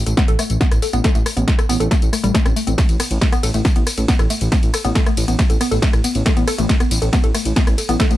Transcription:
0.06 detuned saw bass A1, synth arpeggio sound A4, closed hi-hat, tambourine
0.17 synth arpeggio sound B3, kick, snare, closed hi-hat, tambourine
0.28 detuned saw bass A1, synth arpeggio sound A4, closed hi-hat
0.39 synth arpeggio sound A3, cross-stick, open hi-hat, tambourine
0.50 detuned saw bass A1, closed hi-hat, tambourine
0.61 synth arpeggio sound B3, kick, snare, closed hi-hat, tambourine
0.72 detuned saw bass A1, cross-stick, closed hi-hat, tambourine
0.82 synth arpeggio sound A4, open hi-hat, tambourine
0.93 detuned saw bass A1, synth arpeggio sound B3, closed hi-hat, tambourine
1.04 synth arpeggio sound A4, kick, snare, closed hi-hat, tambourine
1.15 detuned saw bass A1, synth arpeggio sound A3, closed hi-hat, tambourine
1.26 cross-stick, open hi-hat, tambourine
1.37 detuned saw bass A1, synth arpeggio sound B3, closed hi-hat, tambourine
1.48 kick, snare, closed hi-hat, tambourine
1.58 synth arpeggio sound A4, cross-stick, closed hi-hat, tambourine
1.69 detuned saw bass A1, synth arpeggio sound B3, open hi-hat, tambourine
1.80 detuned saw bass A1, synth arpeggio sound A4, closed hi-hat, tambourine
1.91 synth arpeggio sound A3, kick, snare, closed hi-hat, tambourine
2.02 detuned saw bass A1, closed hi-hat, tambourine
2.13 synth arpeggio sound A3, cross-stick, open hi-hat, tambourine
2.24 detuned saw bass A1, synth arpeggio sound G3, closed hi-hat, tambourine
2.34 synth arpeggio sound A3, kick, snare, closed hi-hat, tambourine
2.45 detuned saw bass A1, synth arpeggio sound C4, cross-stick, closed hi-hat, tambourine
2.56 synth arpeggio sound A3, open hi-hat, tambourine
2.67 detuned saw bass A1, synth arpeggio sound C4, closed hi-hat, tambourine
2.78 synth arpeggio sound A3, kick, snare, closed hi-hat, ride, tambourine
2.89 detuned saw bass A1, closed hi-hat, tambourine
3.00 synth arpeggio sound B3, cross-stick, open hi-hat, ride, tambourine
3.10 detuned saw bass A1, closed hi-hat, tambourine
3.21 synth arpeggio sound A4, kick, snare, closed hi-hat, ride, tambourine
3.32 synth arpeggio sound B3, cross-stick, closed hi-hat, tambourine
3.43 detuned saw bass A1, synth arpeggio sound A4, open hi-hat, ride, tambourine
3.54 detuned saw bass A1, synth arpeggio sound A3, closed hi-hat, tambourine
3.65 kick, snare, closed hi-hat, ride, tambourine
3.76 detuned saw bass A1, synth arpeggio sound B3, closed hi-hat
3.87 cross-stick, open hi-hat, ride, tambourine
3.98 detuned saw bass A1, synth arpeggio sound A4, closed hi-hat, tambourine
4.08 synth arpeggio sound B3, kick, snare, closed hi-hat, ride, tambourine
4.19 detuned saw bass A1, synth arpeggio sound A4, cross-stick, closed hi-hat, tambourine
4.30 synth arpeggio sound A3, open hi-hat, ride, tambourine
4.41 detuned saw bass A1, closed hi-hat, tambourine
4.52 synth arpeggio sound B3, kick, snare, closed hi-hat, ride, tambourine
4.63 detuned saw bass A1, closed hi-hat, tambourine
4.74 synth arpeggio sound A4, cross-stick, open hi-hat, ride, tambourine
4.84 detuned saw bass A1, synth arpeggio sound B3, closed hi-hat, tambourine
4.95 synth arpeggio sound A4, kick, snare, closed hi-hat, ride, tambourine
5.06 synth arpeggio sound A3, cross-stick, closed hi-hat, tambourine
5.17 detuned saw bass A1, open hi-hat, ride, tambourine
5.28 detuned saw bass A1, synth arpeggio sound B3, closed hi-hat, tambourine
5.39 kick, snare, closed hi-hat, ride, tambourine
5.50 detuned saw bass A1, synth arpeggio sound A4, closed hi-hat, tambourine
5.61 synth arpeggio sound B3, cross-stick, open hi-hat, ride, tambourine
5.71 detuned saw bass A1, synth arpeggio sound A4, closed hi-hat, tambourine
5.82 synth arpeggio sound A3, kick, snare, closed hi-hat, ride, tambourine
5.93 detuned saw bass A1, cross-stick, closed hi-hat, tambourine
6.04 synth arpeggio sound B3, open hi-hat, ride, tambourine
6.15 detuned saw bass A1, closed hi-hat, tambourine
6.26 synth arpeggio sound A4, kick, snare, closed hi-hat, ride, tambourine
6.37 detuned saw bass A1, synth arpeggio sound B3, closed hi-hat, tambourine
6.48 synth arpeggio sound A4, cross-stick, open hi-hat, ride, tambourine
6.58 detuned saw bass A1, synth arpeggio sound A3, closed hi-hat, tambourine
6.69 kick, snare, closed hi-hat, ride, tambourine
6.80 synth arpeggio sound B3, cross-stick, closed hi-hat, tambourine
6.91 detuned saw bass A1, open hi-hat, ride, tambourine
7.02 detuned saw bass A1, synth arpeggio sound A4, closed hi-hat, tambourine
7.13 synth arpeggio sound B3, kick, snare, closed hi-hat, ride, tambourine
7.24 detuned saw bass A1, synth arpeggio sound A4, closed hi-hat
7.35 synth arpeggio sound A3, cross-stick, open hi-hat, ride, tambourine
7.45 detuned saw bass A1, closed hi-hat, tambourine
7.56 synth arpeggio sound B3, kick, snare, closed hi-hat, ride, tambourine
7.67 detuned saw bass A1, cross-stick, closed hi-hat, tambourine
7.78 synth arpeggio sound A4, open hi-hat, ride, tambourine
7.89 detuned saw bass A1, synth arpeggio sound B3, closed hi-hat, tambourine
8.00 synth arpeggio sound A4, kick, snare, closed hi-hat, ride, tambourine
8.11 detuned saw bass A1, synth arpeggio sound A3, closed hi-hat, tambourine

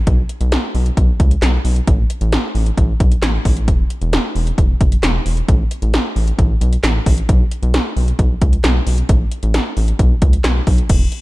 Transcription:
0.07 analog synth bass B1, kick, closed hi-hat
0.29 closed hi-hat
0.41 analog synth bass B1, closed hi-hat
0.52 snare, closed hi-hat
0.75 analog synth bass B1, open hi-hat
0.86 closed hi-hat
0.97 analog synth bass B1, kick, closed hi-hat
1.20 analog synth bass C#2, kick, closed hi-hat
1.31 closed hi-hat
1.42 analog synth bass B1, snare, clap, closed hi-hat
1.65 analog synth bass B1, open hi-hat
1.76 closed hi-hat
1.87 analog synth bass A1, kick, closed hi-hat
2.10 closed hi-hat
2.21 analog synth bass A1, closed hi-hat
2.32 snare, closed hi-hat
2.55 analog synth bass A1, open hi-hat
2.66 closed hi-hat
2.77 analog synth bass A1, kick, closed hi-hat
3.00 analog synth bass B1, kick, closed hi-hat
3.12 closed hi-hat
3.22 analog synth bass A1, snare, clap, closed hi-hat
3.45 analog synth bass A1, kick, open hi-hat
3.57 closed hi-hat
3.68 analog synth bass E1, kick, closed hi-hat
3.90 closed hi-hat
4.01 analog synth bass E1, closed hi-hat
4.13 snare, closed hi-hat
4.35 analog synth bass E1, open hi-hat
4.47 closed hi-hat
4.58 analog synth bass E1, kick, closed hi-hat
4.81 analog synth bass F#1, kick, closed hi-hat
4.92 closed hi-hat
5.03 analog synth bass E1, snare, clap, closed hi-hat
5.26 analog synth bass E1, open hi-hat
5.37 closed hi-hat
5.48 analog synth bass A1, kick, closed hi-hat
5.71 closed hi-hat
5.82 analog synth bass A1, closed hi-hat
5.94 snare, closed hi-hat
6.16 analog synth bass A1, open hi-hat
6.28 closed hi-hat
6.39 analog synth bass A1, kick, closed hi-hat
6.61 analog synth bass B1, closed hi-hat
6.73 closed hi-hat
6.84 analog synth bass A1, snare, clap, closed hi-hat
7.06 analog synth bass A1, kick, open hi-hat
7.18 closed hi-hat
7.29 analog synth bass B1, kick, closed hi-hat
7.51 closed hi-hat
7.63 analog synth bass B1, closed hi-hat
7.74 snare, closed hi-hat
7.97 analog synth bass B1, open hi-hat
8.08 closed hi-hat
8.19 analog synth bass B1, kick, closed hi-hat
8.42 analog synth bass C#2, kick, closed hi-hat
8.53 closed hi-hat
8.64 analog synth bass B1, snare, clap, closed hi-hat
8.87 analog synth bass B1, open hi-hat
8.98 closed hi-hat
9.09 analog synth bass A1, kick, closed hi-hat
9.31 closed hi-hat
9.43 analog synth bass A1, closed hi-hat
9.54 snare, closed hi-hat
9.77 analog synth bass A1, open hi-hat
9.88 closed hi-hat
9.99 analog synth bass B1, kick, closed hi-hat
10.22 analog synth bass C#2, kick, closed hi-hat
10.33 closed hi-hat
10.44 analog synth bass B1, snare, clap, closed hi-hat
10.67 analog synth bass B1, kick, open hi-hat
10.78 closed hi-hat
10.89 analog synth bass E1, kick, closed hi-hat, crash
11.12 closed hi-hat

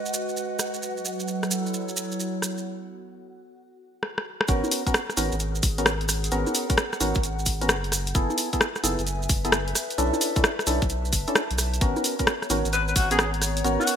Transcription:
Already playing: ambient pad G#3 F#4 B4 D#5, string machine F#4 F#5
0.06 maracas
0.14 maracas
0.29 maracas
0.37 maracas
0.59 cross-stick, maracas
0.74 maracas
0.83 ambient pad F#3, maracas
0.97 maracas
1.05 maracas
1.11 ambient pad A4
1.20 maracas
1.28 ambient pad E4, maracas
1.43 cross-stick, maracas
1.51 maracas
1.56 ambient pad C#5
1.66 maracas
1.74 maracas
1.88 maracas
1.97 maracas
2.12 maracas
2.20 maracas
2.42 cross-stick, maracas
2.58 maracas
4.03 cross-stick
4.18 cross-stick
4.41 cross-stick
4.48 sub bass G#1, synth stab B3 C#4 F#4 A#4, ambient pad G#4, kick, closed hi-hat, maracas
4.64 high conga, maracas
4.71 open hi-hat, maracas
4.87 synth stab B3 C#4 F#4 A#4, kick, closed hi-hat, maracas
4.94 cross-stick, maracas
5.10 cross-stick, maracas
5.17 sub bass G#1, synth stab B3 C#4 F#4 A#4, open hi-hat, high conga, maracas
5.32 sub bass G#1, closed hi-hat, maracas
5.40 closed hi-hat, maracas
5.55 maracas
5.63 sub bass G#1, kick, open hi-hat, maracas
5.78 synth stab B3 C#4 F#4 A#4, ambient pad F#5, closed hi-hat, maracas
5.86 cross-stick, maracas
6.01 closed hi-hat
6.08 cross-stick, open hi-hat, maracas
6.24 closed hi-hat, maracas
6.31 sub bass G#1, synth stab B3 C#4 F#4 A#4, closed hi-hat, maracas
6.47 high conga, maracas
6.55 open hi-hat, maracas
6.70 synth stab B3 C#4 F#4 A#4, kick, closed hi-hat, maracas
6.78 cross-stick, maracas
6.93 cross-stick, maracas
7.01 sub bass G#1, synth stab B3 C#4 F#4 A#4, open hi-hat, high conga, maracas
7.15 sub bass G#1, kick, closed hi-hat, maracas
7.23 closed hi-hat, maracas
7.39 maracas
7.46 kick, open hi-hat, maracas
7.61 synth stab B3 C#4 F#4 A#4, closed hi-hat, maracas
7.69 sub bass F#1, cross-stick, maracas
7.84 closed hi-hat
7.92 cross-stick, open hi-hat, maracas
8.07 closed hi-hat, maracas
8.15 sub bass F#1, synth stab B3 E4 G#4 A4, ambient pad B4, kick, closed hi-hat, maracas
8.30 high conga, maracas
8.38 ambient pad E5, open hi-hat, maracas
8.53 synth stab B3 E4 G#4 A4, kick, closed hi-hat, maracas
8.61 ambient pad G#5, cross-stick, maracas
8.76 cross-stick, maracas
8.84 sub bass F#1, synth stab B3 E4 G#4 A4, open hi-hat, high conga, maracas
8.99 sub bass F#1, closed hi-hat, maracas
9.07 closed hi-hat, maracas
9.22 maracas
9.29 sub bass F#1, kick, open hi-hat, maracas
9.45 synth stab B3 E4 G#4 A4, closed hi-hat, maracas
9.52 cross-stick, maracas
9.68 closed hi-hat
9.75 cross-stick, open hi-hat, maracas
9.90 closed hi-hat, maracas
9.98 sub bass B1, synth stab C#4 D4 E4 A4, closed hi-hat, maracas
10.13 high conga, maracas
10.21 open hi-hat, maracas
10.36 synth stab C#4 D4 E4 A4, kick, closed hi-hat, maracas
10.44 cross-stick, maracas
10.59 cross-stick, maracas
10.67 sub bass B1, synth stab C#4 D4 E4 A4, ambient pad A5, open hi-hat, high conga, maracas
10.82 sub bass B1, kick, closed hi-hat, maracas
10.89 closed hi-hat, maracas
11.05 maracas
11.13 sub bass F#1, kick, open hi-hat, maracas
11.27 synth stab C#4 D4 E4 A4, closed hi-hat, maracas
11.35 cross-stick, maracas
11.51 sub bass B1, closed hi-hat
11.58 cross-stick, open hi-hat, maracas
11.74 closed hi-hat, maracas
11.81 sub bass G#1, synth stab B3 C#4 F#4 A#4, string machine B3 C#5, ambient pad C#5, kick, closed hi-hat, maracas
11.96 high conga, maracas
12.04 open hi-hat, maracas
12.19 synth stab B3 C#4 F#4 A#4, kick, closed hi-hat, maracas
12.27 cross-stick, maracas
12.36 ambient pad A#5
12.42 ambient pad F#5, cross-stick, maracas
12.50 sub bass G#1, synth stab B3 C#4 F#4 A#4, open hi-hat, high conga, maracas
12.65 sub bass G#1, closed hi-hat, maracas
12.73 alto saxophone B4, closed hi-hat, maracas
12.88 alto saxophone B4, maracas
12.96 sub bass G#1, alto saxophone F#4, kick, open hi-hat, maracas
13.11 synth stab B3 C#4 F#4 A#4, alto saxophone G#4, closed hi-hat, maracas
13.19 alto saxophone G#4, cross-stick, maracas
13.34 closed hi-hat
13.42 cross-stick, open hi-hat, maracas
13.57 closed hi-hat, maracas
13.64 sub bass G#1, synth stab B3 C#4 F#4 A#4, closed hi-hat, maracas
13.80 alto saxophone F#4, high conga, maracas
13.87 open hi-hat, maracas

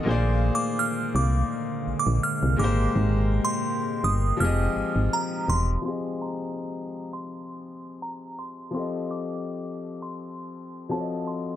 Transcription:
Already playing: grand piano A4, ambient pad F5
0.03 fm bass A#1, grand piano A#2 A#3 G#4, ambient pad D3 G#3 A#3
0.09 grand piano C5 D5
0.55 synth bell D6
0.79 synth bell F6
1.15 fm bass C2, synth bell D6
1.87 fm bass A#1
1.99 synth bell D6
2.07 fm bass A#1
2.23 synth bell F6
2.43 fm bass C2
2.56 fm bass G#1, grand piano A#2 G#3 G4, ambient pad C3 G5, synth bell D6
2.62 grand piano A#4 C5
2.96 fm bass G#1
3.45 synth bell C6
4.04 fm bass G1, synth bell D#6
4.37 fm bass F1, grand piano F3 C4 G4, ambient pad F3 D#4, synth bell F6
4.42 grand piano G#4 D#5
4.76 fm bass G#1
4.96 fm bass G#1
5.13 synth bell A#5
5.48 fm bass E1, synth bell C6
5.82 grand piano F3 C4 G4, synth bell C6
5.87 grand piano G#4 D#5
6.22 synth bell A#5
7.13 synth bell C6
8.02 synth bell A#5
8.39 synth bell C6
8.71 grand piano F3 C4 G4
8.75 grand piano A4 D#5, synth bell C6
9.11 synth bell D6
10.02 synth bell C6
10.89 grand piano F3 C4 F#4 A4 C#5, synth bell A5
10.99 grand piano D#5
11.27 synth bell C6

